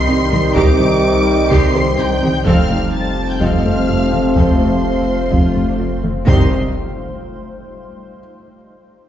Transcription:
Already playing: C2 C3 D#3 G3 D#4 C5 D#5 G5 C6 C7
0.07 C2 C4 D#4 G4
0.31 C2 D#3 D#4 G4, taiko mid
0.55 C2 C3 D#4 G4 D6 D7, taiko
0.79 C2 D#3 D#4 G4
1.50 C2 C3 D#4 G4 C6 C7, taiko
1.74 C2 D#3 D#4 G4 C5
1.98 C2 C4 D#4 G4 G5 G6
2.21 C2 D#3 D#4 G4, taiko mid
2.45 F1 F2 C3 F3 A3 C4 F4 A4 C5 F5 F6, taiko
2.70 F1 F2 A3 C4 A4
2.92 A5 A6
3.28 G5 G6
3.40 F1 F2 F3 C4 A4 D#5 F5 F6, taiko
3.65 F1 F2 A3 C4 A4
3.88 F1 F2 C4 F4 A4
4.12 F1 F2 A3 C4 A4, taiko mid
4.36 F1 F2 F3 C4 A4 C5 C6, taiko
4.60 F1 F2 A3 C4 A4
4.84 C4
5.31 F1 F2 F3 F4 F5, taiko
5.55 F1 F2 A3
5.69 D4
5.79 F1 F2 C4 F4
6.03 F1 F2 A3, taiko mid
6.26 C2 C3 D#3 G3 C4 D#4 G4 C5 C6, taiko low, impact

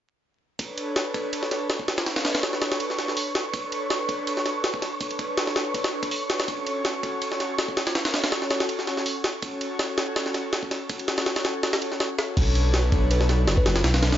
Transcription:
0.59 D4 A4 B4 C#5 C#6, kick, ride
0.78 ride
0.96 snare, ride
1.14 D4 A4 B4 C#5, kick, ride
1.33 ride
1.43 snare
1.51 D4 A4 B4 C#5, snare, ride
1.70 snare, ride
1.79 kick
1.88 snare, ride
1.98 snare, ride
2.06 D4 A4 B4 C#5, snare, ride
2.16 snare, ride
2.25 snare, ride
2.35 snare, ride
2.43 snare, ride
2.53 snare
2.62 D4 A4 B4 C#5, snare, ride
2.72 snare, ride
2.80 ride
2.90 snare
2.98 D4 A4 B4 C#5, snare, ride
3.08 snare
3.17 open hi-hat
3.35 snare, ride
3.54 D4 A4 B4 C#5, kick, ride
3.72 ride
3.90 snare, ride
4.09 D4 A4 B4 C#5, kick, ride
4.27 ride
4.37 snare
4.46 D4 A4 B4 C#5, snare, ride
4.64 snare, ride
4.74 kick
4.82 snare, ride
5.01 D4 A4 B4 C#5, kick, ride
5.11 ride
5.19 kick, ride
5.38 snare, ride
5.47 snare
5.56 D4 A4 B4 C#5, snare, ride
5.74 kick, ride
5.84 snare, ride
5.93 D4 A4 B4 C#5
6.03 kick, ride
6.11 open hi-hat
6.30 D4 A4 B4 C#5, snare, ride
6.40 snare, ride
6.48 C#4 F#4 A4 C#5, kick, ride
6.67 ride
6.85 snare, ride
7.03 C#4 F#4 A4 C#5, kick, ride
7.22 ride
7.32 snare
7.40 C#4 F#4 A4 C#5, snare, ride
7.58 snare, ride
7.68 kick
7.77 snare, ride
7.87 snare, ride
7.95 C#4 F#4 A4 C#5, snare, ride
8.05 snare, ride
8.14 snare, ride
8.24 snare, ride
8.32 snare, ride
8.42 snare
8.51 C#4 F#4 A4 C#5, snare, ride
8.60 snare, ride
8.69 ride
8.79 snare
8.87 C#4 F#4 A4 C#5, snare, ride
8.97 snare
9.06 open hi-hat
9.24 snare, ride
9.42 C#4 F#4 A4 C#5, kick, ride
9.61 ride
9.79 snare, ride
9.98 C#4 F#4 A4 C#5, snare, ride
10.16 snare, ride
10.26 snare
10.34 C#4 F#4 A4 C#5, snare, ride
10.53 snare, ride
10.63 kick
10.71 snare, ride
10.89 C#4 F#4 A4 C#5, kick, ride
10.99 ride
11.08 snare, ride
11.18 snare, ride
11.26 snare, ride
11.36 snare, ride
11.45 C#4 F#4 A4 C#5, snare, ride
11.63 snare, ride
11.73 snare, ride
11.82 C#4 F#4 A4 C#5, ride
11.92 snare
12.00 snare, ride
12.18 C#4 F#4 A4 C#5, snare, ride
12.37 B1 D4 A4 B4 C#5, kick, crash, ride
12.55 ride
12.74 snare, ride
12.92 B1 D4 A4 B4 C#5, kick, ride
13.11 B4, ride
13.21 snare
13.29 D4 A4 B4 C#5, snare, ride
13.47 F#1, snare, ride
13.57 B4, kick
13.66 F#1, snare, ride
13.76 snare, ride
13.84 B1 D4 A4 B4 C#5, snare, ride
13.94 snare, ride
14.03 snare, ride
14.12 snare, ride

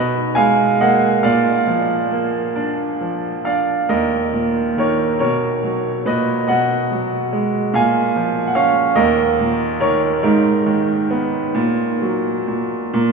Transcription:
Already playing: B2 B4 D#5
0.35 G#3 F5 G#5
0.81 A#3 D#5 F#5
1.23 A#2 D5 F5
1.67 F3
2.11 A#3
2.56 D4
3.01 F3
3.45 D4 D5 F5
3.89 D#2 A#4 D#5
4.33 A#2
4.77 D#3 A#4 C#5
5.19 B2 A#4 C#5
5.63 F#3
6.06 A#2 B4 D#5
6.48 B2 D#5 F#5
6.91 F#3
7.33 G#3
7.74 A#2 F5 G#5
8.16 F3
8.47 F#5
8.55 C#4 C#5 F5
8.96 D#2 A#4 D#5
9.39 A#2
9.80 D#3 A#4 C#5
10.23 G#2 D#4 A#4
10.66 D#3
11.10 B3
11.55 A#2
12.02 F#3
12.48 A#2
12.94 A#2

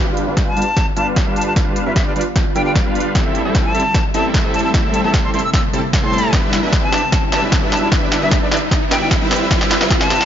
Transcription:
Already playing: G1 D3 G3 B3 D4 F4 B4 F5, riser
0.17 closed hi-hat
0.27 G1 G3 D4 F4 B4 F5
0.37 kick, snare, closed hi-hat
0.47 A5
0.57 G1 G3 D4 F4 B4 F5, closed hi-hat
0.62 closed hi-hat
0.77 kick, snare, closed hi-hat
0.96 G1 G3 D4 F4 B4 F5 A5, closed hi-hat
1.16 kick, snare, closed hi-hat
1.27 G1 G3 D4 F4 B4 F5
1.36 A5, closed hi-hat
1.41 closed hi-hat
1.47 A5
1.56 G3 D4 F4 B4 F5, kick, snare, closed hi-hat
1.76 closed hi-hat
1.86 G1 G3 D4 F4 B4 E5 F5
1.96 E5, kick, snare, closed hi-hat
2.06 D5
2.16 G1 G3 D4 F4 B4 D5 F5, closed hi-hat
2.21 closed hi-hat
2.36 kick, snare, closed hi-hat
2.55 G1 G3 D4 F4 B4 F5 G5, closed hi-hat
2.66 G5
2.75 kick, snare, closed hi-hat
2.85 G1 G3 D4 F4 B4 F5
2.95 closed hi-hat
3.00 closed hi-hat
3.15 A1 C3 G3 A3 C4 E4 A4 E5, kick, snare, closed hi-hat
3.35 closed hi-hat
3.45 A1 G3 C4 E4 A4 E5
3.55 kick, snare, closed hi-hat
3.65 A5
3.75 A1 G3 C4 E4 A4 E5, closed hi-hat
3.80 closed hi-hat
3.94 kick, snare, closed hi-hat
4.14 A1 G3 C4 E4 A4 E5 A5, closed hi-hat
4.34 kick, snare, closed hi-hat
4.44 A1 G3 C4 E4 A4 E5
4.54 A5, closed hi-hat
4.59 closed hi-hat
4.64 A5
4.74 A1 G3 C4 E4 A4 E5, kick, snare, closed hi-hat
4.94 A5, closed hi-hat
5.04 A1 G3 C4 E4 A4 E5 A5
5.14 kick, snare, closed hi-hat
5.24 C6
5.34 A1 G3 C4 E4 A4 E5 C6, closed hi-hat
5.39 closed hi-hat
5.44 E6
5.54 E6, kick, snare, closed hi-hat
5.73 A1 G3 C4 E4 A4 A5, closed hi-hat
5.93 kick, snare, closed hi-hat
6.03 A2 G3 C4 E4 A4 A5 C6
6.13 closed hi-hat
6.18 closed hi-hat
6.33 D3 G3 B3 D4 E4 B4 E5, kick, snare, closed hi-hat
6.53 snare, closed hi-hat
6.63 B1 G3 D4 E4 B4 E5
6.73 kick, snare, closed hi-hat
6.83 A5
6.92 B1 G3 D4 E4 B4 E5, snare, closed hi-hat
6.98 closed hi-hat
7.12 kick, snare, closed hi-hat
7.32 B1 G3 D4 E4 B4 E5 A5, snare, closed hi-hat
7.52 kick, snare, closed hi-hat
7.62 B1 G3 D4 E4 B4 E5
7.72 A5, snare, closed hi-hat
7.77 closed hi-hat
7.82 A5
7.92 G3 D4 E4 B4 E5, kick, snare, closed hi-hat
8.12 snare, closed hi-hat
8.22 B1 G3 D4 E4 B4 E5
8.31 E5, kick, snare, closed hi-hat
8.42 D5
8.51 B1 G3 D4 E4 B4 D5 E5, snare, closed hi-hat
8.57 closed hi-hat
8.71 kick, snare, closed hi-hat
8.91 B1 G3 D4 E4 B4 E5 G5, snare, closed hi-hat
9.01 G5
9.11 kick, snare, closed hi-hat
9.21 C2 G3 C4 E4 B4 E5
9.31 C3 G3, snare, open hi-hat
9.36 closed hi-hat
9.51 C2 G3 C4 E4 B4 E5, kick, snare, closed hi-hat
9.61 snare
9.71 snare, closed hi-hat
9.81 C2 G3 C4 E4 B4 E5, snare
9.90 kick, snare, closed hi-hat
10.01 A5, snare
10.10 C2 G3 C4 E4 B4 E5, snare, closed hi-hat
10.16 closed hi-hat
10.21 snare

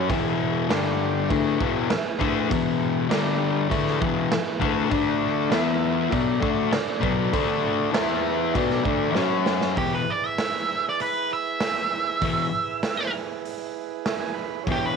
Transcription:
0.10 E2 B2 E3 E4 G#4 B4, kick, crash
0.69 G2 D3 G3 D4 G4 D5, snare, crash
1.29 D3 A3 D4 E4 G#4 B4, kick, crash
1.58 E2 B2 E3, kick
1.90 muted distorted electric guitar stroke, snare, crash
2.19 D3 A3 D4, kick
2.50 E2 B2 E3, kick, crash
3.09 G2 D3 G3 D4 G4 D5, snare, crash
3.69 D3 A3 D4 E4 G#4 B4, kick, crash
3.87 snare
4.00 E2 B2 E3, kick
4.31 muted distorted electric guitar stroke, snare, crash
4.60 D3 A3 D4, kick
4.90 D3 A3 D4, kick, crash
4.94 D4 A4 D5
5.50 E3 B3 E4 B4 E5, snare, crash
6.11 B2 F#3 B3 D4 A4 D5, kick, crash
6.41 D3 A3 D4, kick
6.73 muted distorted electric guitar stroke, snare, crash
7.00 B2 F#3 B3, kick
7.33 D3 A3 D4, kick, crash
7.92 E3 B3 E4 B4 E5, snare, crash
8.55 B2 F#3 B3 D4 D5, kick, crash
8.59 A4
8.70 snare
8.84 D3 A3 D4, kick
9.15 F#3 C#4 F#4 C#5, snare
9.46 snare
9.61 snare
9.76 E2 B2 E3 E4 G4 G#4, kick, open hi-hat
9.80 B4
9.95 B4
10.10 D5
10.26 E5
10.38 snare, open hi-hat
10.89 D5
11.00 B4, open hi-hat
11.33 E5
11.60 snare, open hi-hat
12.22 E2 B2 E3, kick, open hi-hat
12.83 snare, open hi-hat
13.45 open hi-hat
14.06 E5, snare, open hi-hat
14.20 G#5
14.34 B5
14.61 E4 G#4 C#5
14.67 E2 B2 E3, kick, open hi-hat
14.72 G4
14.86 B4

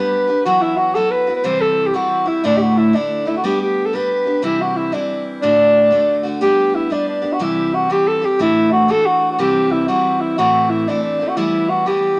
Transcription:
Already playing: G3 B3 D4 G4 B4
0.27 B3 D4 G4
0.45 E3 F#3 B3 E4 F#4
0.61 E4
0.77 F#4
0.95 F#3 B3 E4 F#4 A4
1.11 B4
1.27 B3 E4 F#4
1.36 B4
1.44 C3 E3 G3 C4 E4 C5
1.61 A4
1.86 G4
1.94 E3 G3 C4 E4 F#4
2.25 G3 C4 E4
2.44 D2 A2 D3 A3 D4 E4
2.57 G4
2.62 F#4
2.77 E4
2.93 D3 A3 D4 E4
3.25 D3 A3 D4 E4
3.37 F#4
3.44 G3 B3 D4 G4
3.62 G4
3.86 A4
3.93 G3 B3 D4 G4 B4
4.26 B3 D4 G4
4.42 C3 E3 G3 C4 E4
4.61 F#4
4.76 E4
4.92 E3 G3 C4 D4 E4
5.42 D2 A2 D3 A3 D4 F#4
5.91 D3 A3 D4 F#4
6.23 D3 A3 D4 F#4
6.41 G3 B3 D4 G4
6.75 E4
6.90 G3 B3 D4 G4
7.09 D4
7.22 B3 D4 G4
7.33 F#4
7.39 C3 E3 G3 C4 E4 G4
7.74 F#4
7.90 E3 G3 C4 G4
8.08 A4
8.22 G3 C4 G4
8.39 D2 A2 E3 A3 D4 E4 F#4
8.72 F#4
8.88 E3 A3 D4 F#4 A4
9.06 F#4
9.31 F#4
9.38 C3 E3 G3 C4 E4 G4
9.71 E4
9.88 E3 G3 C4 E4 F#4
10.21 E4
10.38 A2 E3 A3 C4 E4 F#4
10.70 E4
10.88 E3 A3 C4 D4 E4
11.03 D4
11.20 A3 C4 E4
11.28 F#4
11.36 E3 G3 B3 E4
11.69 F#4
11.86 E3 G3 B3 E4 G4

